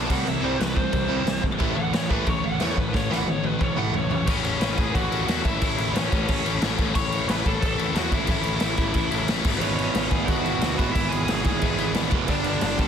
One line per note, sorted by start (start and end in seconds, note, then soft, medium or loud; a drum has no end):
0.00 0.11 A5 loud
0.09 0.24 C2 loud
0.09 0.24 C3 medium
0.09 0.75 C3 medium
0.09 0.24 E3 medium
0.09 0.26 G3 loud
0.09 0.76 G3 loud
0.09 0.75 C4 loud
0.09 0.28 F#5 medium
0.09 kick loud
0.09 crash loud
0.25 0.41 C2 medium
0.25 0.40 C3 medium
0.25 0.41 E3 loud
0.25 0.42 G3 medium
0.25 0.44 E5 loud
0.25 crash medium
0.41 0.58 C2 medium
0.41 0.57 C3 medium
0.41 0.57 E3 loud
0.41 0.59 G3 loud
0.41 0.60 C4 loud
0.41 0.60 C5 loud
0.59 0.88 C2 medium
0.59 0.75 C3 medium
0.59 0.75 E3 medium
0.59 0.75 G3 medium
0.59 0.77 B4 medium
0.59 snare loud
0.59 crash medium
0.76 0.91 C3 medium
0.76 1.44 C3 medium
0.76 0.92 E3 medium
0.76 1.43 G3 medium
0.76 1.42 C4 loud
0.76 1.42 C5 loud
0.76 kick medium
0.92 1.08 C2 loud
0.92 1.07 C3 medium
0.92 1.08 E3 medium
0.92 1.08 G3 loud
0.92 kick loud
0.92 crash medium
1.09 1.24 C2 loud
1.09 1.24 C3 medium
1.09 1.25 E3 medium
1.09 1.26 G3 loud
1.09 1.26 C4 loud
1.25 1.40 C2 medium
1.25 1.41 C3 medium
1.25 1.42 E3 medium
1.25 1.41 G3 medium
1.25 snare loud
1.25 crash medium
1.42 1.60 G#1 loud
1.42 1.58 C3 medium
1.42 1.59 E3 medium
1.42 1.58 G3 medium
1.42 kick medium
1.59 1.75 A1 medium
1.59 2.27 A2 loud
1.59 1.75 A2 medium
1.59 1.76 E3 loud
1.59 2.29 E3 loud
1.59 1.77 A3 loud
1.59 2.31 A3 loud
1.59 kick loud
1.59 crash medium
1.76 1.91 A1 loud
1.76 1.92 A2 medium
1.76 1.92 E3 medium
1.76 1.93 F#5 loud
1.93 2.08 A1 medium
1.93 2.09 A2 medium
1.93 2.09 E3 medium
1.93 2.10 C#5 loud
1.93 snare loud
1.93 crash medium
2.10 2.25 A1 medium
2.10 2.26 A2 loud
2.10 2.26 E3 loud
2.10 2.27 A3 loud
2.10 2.28 B4 medium
2.10 kick loud
2.26 2.41 A1 loud
2.26 2.42 A2 medium
2.26 2.93 A2 medium
2.26 2.43 E3 medium
2.26 2.95 E3 medium
2.26 2.44 C#5 medium
2.26 kick loud
2.26 crash soft
2.31 2.96 A3 loud
2.43 2.58 A1 loud
2.43 2.59 A2 medium
2.43 2.59 E3 medium
2.43 2.61 F#5 loud
2.60 2.75 E2 medium
2.60 2.76 A2 loud
2.60 2.76 E3 medium
2.60 2.77 A3 loud
2.60 2.80 C#5 loud
2.60 snare loud
2.60 crash medium
2.77 2.92 A1 loud
2.77 2.92 A2 medium
2.77 2.92 E3 medium
2.77 2.95 B4 loud
2.77 kick medium
2.93 3.08 A1 loud
2.93 3.09 A2 medium
2.93 3.58 A2 loud
2.93 3.09 E3 medium
2.93 3.60 E3 loud
2.93 3.61 A3 loud
2.93 3.11 C#5 medium
2.93 kick loud
2.93 snare medium
3.11 3.25 A1 loud
3.11 3.26 A2 medium
3.11 3.27 E3 loud
3.11 3.27 A3 loud
3.11 3.27 F#5 loud
3.11 snare medium
3.26 3.55 A1 medium
3.26 3.43 A2 medium
3.26 3.43 E3 loud
3.26 high tom medium
3.30 3.45 C#5 medium
3.44 3.59 A2 medium
3.44 3.59 E3 medium
3.44 3.63 B4 medium
3.44 high tom medium
3.59 3.76 A1 loud
3.59 4.26 A2 medium
3.59 3.75 A2 medium
3.59 3.76 E3 loud
3.59 4.27 E3 medium
3.59 4.28 A3 medium
3.59 3.78 C#5 medium
3.59 kick loud
3.59 mid tom medium
3.76 3.92 A1 medium
3.76 3.93 A2 loud
3.76 3.93 E3 loud
3.76 3.93 A3 loud
3.76 3.94 F#5 loud
3.76 mid tom medium
3.94 4.09 A1 loud
3.94 4.09 A2 medium
3.94 4.09 E3 medium
3.94 4.11 C#5 medium
3.94 floor tom medium
4.11 4.26 A1 loud
4.11 4.25 A2 medium
4.11 4.26 E3 medium
4.11 4.26 C#5 loud
4.11 floor tom medium
4.26 4.53 A1 medium
4.26 5.14 A2 loud
4.26 4.61 A2 loud
4.26 5.13 E3 loud
4.26 4.62 E3 medium
4.26 5.12 A3 loud
4.26 4.62 A3 loud
4.26 4.44 C#4 medium
4.26 5.11 C#4 loud
4.26 4.43 C#5 loud
4.26 kick loud
4.26 crash loud
4.26 crash medium
4.31 5.10 E4 loud
4.44 4.76 C#4 medium
4.44 4.76 C#5 loud
4.44 crash medium
4.61 4.74 A1 medium
4.61 4.79 A2 loud
4.61 4.78 E3 loud
4.61 4.78 A3 loud
4.61 snare loud
4.61 crash medium
4.77 4.91 A1 medium
4.77 4.94 A2 medium
4.77 4.95 E3 medium
4.77 4.95 A3 loud
4.77 4.94 G#4 medium
4.77 4.94 G#5 loud
4.77 kick medium
4.77 crash medium
4.94 5.08 A1 loud
4.94 5.27 A2 loud
4.94 5.27 E3 loud
4.94 5.28 A3 loud
4.94 5.26 F#4 medium
4.94 5.25 F#5 medium
4.94 kick loud
4.94 crash medium
5.11 5.24 A1 medium
5.11 5.27 A2 medium
5.11 5.28 E3 medium
5.11 5.29 A3 medium
5.11 5.30 C#4 medium
5.11 5.30 E4 medium
5.11 crash medium
5.27 5.41 E2 medium
5.27 5.60 A2 medium
5.27 5.46 A2 medium
5.27 5.45 E3 medium
5.27 5.62 E3 medium
5.27 5.45 A3 medium
5.27 5.62 A3 medium
5.27 5.63 C#4 loud
5.27 5.44 F#4 medium
5.27 5.44 F#5 medium
5.27 snare loud
5.27 crash medium
5.31 5.64 E4 loud
5.44 5.57 A1 loud
5.44 5.61 A2 medium
5.44 5.61 E3 medium
5.44 5.62 A3 loud
5.44 5.77 E4 medium
5.44 5.77 E5 loud
5.44 kick loud
5.44 crash medium
5.61 5.75 A1 loud
5.61 6.48 A2 loud
5.61 5.94 A2 medium
5.61 5.95 E3 loud
5.61 6.47 E3 loud
5.61 5.95 A3 loud
5.61 6.46 A3 loud
5.61 6.45 C#4 loud
5.61 6.44 E4 loud
5.61 kick loud
5.61 crash loud
5.78 5.91 A1 medium
5.78 5.94 E4 medium
5.78 5.95 E5 medium
5.78 crash medium
5.93 6.07 A1 medium
5.93 6.12 A2 medium
5.93 6.12 E3 medium
5.93 6.11 A3 loud
5.93 6.58 C#4 medium
5.93 6.57 C#5 medium
5.93 snare loud
5.93 crash loud
6.11 6.25 A1 medium
6.11 6.27 A2 medium
6.11 6.28 E3 medium
6.11 6.29 A3 medium
6.11 kick loud
6.11 crash medium
6.28 6.42 A1 loud
6.28 6.62 A2 loud
6.28 6.63 E3 loud
6.28 6.63 A3 loud
6.28 kick loud
6.28 crash loud
6.44 6.58 A1 medium
6.44 6.61 A2 medium
6.44 6.62 E3 medium
6.44 6.63 A3 medium
6.44 6.64 C#4 medium
6.44 6.65 E4 medium
6.44 crash medium
6.62 6.75 A1 loud
6.62 6.95 A2 medium
6.62 6.79 A2 medium
6.62 6.96 E3 medium
6.62 6.79 E3 medium
6.62 6.78 A3 medium
6.62 6.96 A3 medium
6.62 6.98 C#4 medium
6.62 6.98 E4 medium
6.62 snare loud
6.62 crash medium
6.78 6.91 A1 loud
6.78 6.94 A2 medium
6.78 6.95 E3 medium
6.78 6.96 A3 loud
6.78 kick medium
6.78 crash medium
6.95 7.21 A1 medium
6.95 7.28 A2 loud
6.95 7.77 A2 loud
6.95 7.29 E3 loud
6.95 7.80 E3 loud
6.95 7.29 A3 loud
6.95 7.78 A3 loud
6.95 7.78 C#4 loud
6.95 7.77 E4 loud
6.95 7.27 C#5 medium
6.95 7.29 C#6 loud
6.95 kick loud
6.95 crash medium
7.12 crash medium
7.27 7.41 A1 medium
7.27 7.46 A2 medium
7.27 7.46 E3 loud
7.27 7.45 A3 loud
7.27 7.45 B4 medium
7.27 7.46 B5 medium
7.27 snare loud
7.27 crash loud
7.46 7.58 A1 medium
7.46 7.61 A2 medium
7.46 7.62 E3 medium
7.46 7.62 A3 medium
7.46 7.93 A4 medium
7.46 7.97 A5 loud
7.46 kick medium
7.46 crash medium
7.62 7.75 A1 loud
7.62 7.93 A2 medium
7.62 7.95 E3 loud
7.62 7.95 A3 loud
7.62 kick loud
7.62 crash medium
7.78 7.91 A1 loud
7.78 7.94 A2 medium
7.78 7.96 E3 medium
7.78 7.95 A3 medium
7.78 7.94 C#4 medium
7.78 7.99 E4 medium
7.78 crash medium
7.95 8.08 E2 loud
7.95 8.12 A2 medium
7.95 8.27 A2 medium
7.95 8.12 E3 medium
7.95 8.29 E3 medium
7.95 8.10 A3 loud
7.95 8.28 A3 medium
7.95 8.29 C#4 medium
7.95 8.12 F#4 medium
7.95 8.13 F#5 medium
7.95 snare loud
7.95 crash medium
7.99 8.32 E4 medium
8.11 8.24 A1 loud
8.11 8.26 A2 medium
8.11 8.28 E3 medium
8.11 8.28 A3 loud
8.11 8.28 E4 medium
8.11 8.30 E5 loud
8.11 kick medium
8.11 crash medium
8.27 8.41 A1 medium
8.27 8.59 A2 loud
8.27 9.11 A2 loud
8.27 8.61 E3 loud
8.27 9.13 E3 loud
8.27 8.61 A3 loud
8.27 9.12 A3 loud
8.27 9.26 E4 medium
8.27 kick loud
8.27 crash medium
8.31 9.10 C#4 loud
8.31 9.11 E4 loud
8.31 9.26 E5 loud
8.43 8.58 A1 medium
8.43 crash medium
8.60 8.75 A1 medium
8.60 8.78 A2 medium
8.60 8.78 E3 loud
8.60 8.77 A3 loud
8.60 snare loud
8.60 crash loud
8.77 8.91 A1 loud
8.77 8.92 A2 medium
8.77 8.94 E3 medium
8.77 8.94 A3 loud
8.77 kick medium
8.77 crash medium
8.94 9.08 A1 loud
8.94 9.26 A2 loud
8.94 9.28 E3 loud
8.94 9.28 A3 loud
8.94 kick loud
8.94 crash medium
9.11 9.25 A1 medium
9.11 9.26 A2 medium
9.11 9.29 E3 medium
9.11 9.28 A3 medium
9.11 9.27 C#4 medium
9.11 9.31 E4 medium
9.11 crash medium
9.28 9.42 A1 loud
9.28 9.44 A2 medium
9.28 9.44 E3 medium
9.28 9.45 E3 medium
9.28 9.44 A3 loud
9.28 9.45 A3 medium
9.28 9.45 C#4 medium
9.28 9.48 E4 medium
9.28 snare loud
9.28 crash loud
9.43 9.58 G#1 loud
9.43 9.60 E2 medium
9.43 10.27 G#2 loud
9.43 9.60 B2 loud
9.43 9.60 E3 loud
9.43 10.28 E3 loud
9.43 10.29 G#3 loud
9.43 kick loud
9.43 crash loud
9.47 10.30 B3 medium
9.47 10.31 E4 loud
9.58 9.87 G#1 medium
9.58 9.94 E2 medium
9.58 9.93 B2 loud
9.58 9.93 E3 loud
9.58 9.61 B4 medium
9.58 9.74 C#5 loud
9.58 crash medium
9.62 9.76 C#4 medium
9.76 10.09 C#4 medium
9.76 10.12 C#5 medium
9.76 crash medium
9.93 10.08 G#1 medium
9.93 10.09 E2 medium
9.93 10.09 B2 medium
9.93 10.11 E3 loud
9.93 snare loud
9.93 crash loud
10.10 10.25 G#1 medium
10.10 10.28 E2 medium
10.10 10.27 B2 medium
10.10 10.26 E3 medium
10.10 10.28 G#4 medium
10.10 10.28 G#5 loud
10.10 kick medium
10.10 crash medium
10.25 10.41 G#1 loud
10.25 10.61 E2 medium
10.25 10.44 G#2 medium
10.25 10.61 B2 loud
10.25 10.60 E3 loud
10.25 10.44 E3 medium
10.25 10.91 F#4 medium
10.25 10.90 F#5 loud
10.25 kick loud
10.25 crash medium
10.30 10.45 G#3 medium
10.30 10.45 B3 medium
10.30 10.44 E4 loud
10.45 10.58 G#1 medium
10.45 10.77 E3 medium
10.45 10.78 G#3 medium
10.45 10.80 B3 medium
10.45 10.77 E4 loud
10.45 crash medium
10.49 10.76 G#2 medium
10.61 10.75 D2 medium
10.61 10.78 E2 medium
10.61 10.78 B2 loud
10.61 10.79 E3 medium
10.61 snare loud
10.61 crash medium
10.77 10.92 G#1 medium
10.77 10.95 E2 medium
10.77 11.60 G#2 medium
10.77 10.94 B2 loud
10.77 11.61 E3 loud
10.77 10.94 E3 loud
10.77 11.61 G#3 loud
10.77 11.64 B3 loud
10.77 kick medium
10.77 crash medium
10.81 11.62 E4 loud
10.91 11.08 G#1 medium
10.91 11.28 E3 loud
10.91 11.11 E4 medium
10.91 11.09 E5 loud
10.91 kick loud
10.91 crash medium
10.96 11.29 E2 loud
10.96 11.28 B2 loud
10.96 12.09 E3 loud
11.09 11.27 G#4 medium
11.09 11.23 G#5 loud
11.09 crash medium
11.13 11.25 G#1 loud
11.24 11.91 G#4 medium
11.24 11.89 G#5 medium
11.24 crash medium
11.29 11.42 G#1 loud
11.29 11.44 E2 medium
11.29 11.44 B2 loud
11.29 11.45 E3 loud
11.29 snare loud
11.44 11.58 G#1 medium
11.44 11.62 E2 medium
11.44 11.61 B2 medium
11.44 11.60 E3 loud
11.44 kick medium
11.44 crash medium
11.62 11.75 G#1 loud
11.62 11.95 E2 medium
11.62 11.78 G#2 medium
11.62 11.95 B2 loud
11.62 11.94 E3 loud
11.62 11.78 E3 medium
11.62 11.79 G#3 loud
11.62 11.78 B3 medium
11.62 11.77 E4 medium
11.62 kick loud
11.62 crash medium
11.78 11.92 G#1 loud
11.78 12.13 G#2 medium
11.78 12.12 E3 medium
11.78 12.12 G#3 medium
11.78 12.11 B3 loud
11.78 12.11 E4 loud
11.78 crash medium
11.94 12.08 G#1 loud
11.94 12.11 E2 medium
11.94 12.12 B2 medium
11.94 12.12 E3 loud
11.94 snare loud
11.94 crash medium
12.11 12.25 F#1 loud
12.11 12.28 E2 medium
12.11 12.28 B2 loud
12.11 12.29 E3 loud
12.11 kick loud
12.11 crash medium
12.28 12.54 G1 medium
12.28 12.88 G2 loud
12.28 12.61 G2 loud
12.28 12.62 D3 loud
12.28 12.88 D3 loud
12.28 12.62 G3 loud
12.28 12.88 G3 loud
12.28 12.45 D4 medium
12.28 12.45 D5 loud
12.28 kick loud
12.28 crash loud
12.32 12.88 B3 loud
12.32 12.88 D4 loud
12.44 12.77 D4 medium
12.44 12.77 D5 loud
12.44 crash medium
12.61 12.75 G1 loud
12.61 12.78 G2 medium
12.61 12.78 D3 loud
12.61 12.77 G3 loud
12.61 snare loud
12.61 crash loud
12.78 12.88 G1 loud
12.78 12.88 G2 medium
12.78 12.88 D3 medium
12.78 12.88 G3 medium
12.78 12.88 A4 medium
12.78 12.88 A5 loud
12.78 kick medium
12.78 crash medium